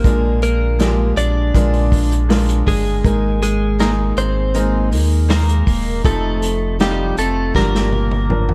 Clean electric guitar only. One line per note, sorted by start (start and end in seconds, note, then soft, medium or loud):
0.00 0.39 A#3 medium
0.00 0.42 A#4 medium
0.43 1.14 A#3 medium
0.43 1.13 A#4 medium
1.17 2.64 D4 medium
1.17 2.63 D5 medium
2.68 3.38 G#3 medium
2.68 3.41 G#4 medium
3.42 3.77 G#3 medium
3.42 3.81 G#4 medium
3.80 3.91 A#3 medium
3.80 3.90 A#4 medium
4.18 4.89 C4 medium
4.18 4.88 C5 medium
5.30 6.01 A#3 medium
5.30 6.05 A#4 loud
6.05 6.76 A3 medium
6.05 6.80 A4 medium
6.81 7.15 G3 medium
6.81 7.18 G4 medium
7.19 7.53 A3 medium
7.19 7.55 A4 medium
7.56 8.54 A#3 medium
7.56 8.54 A#4 loud